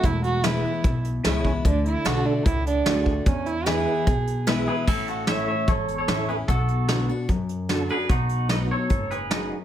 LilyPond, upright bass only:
\new Staff \with { instrumentName = "Upright bass" } { \clef bass \time 4/4 \key a \major \tempo 4 = 149 e,,2 b,,4 cis,4 | d,4 b,,4 cis,4 d,4 | e,2 b,,2 | a,,2 gis,,4 a,,4 |
b,,2 fis,2 | b,,2 fis,,2 | }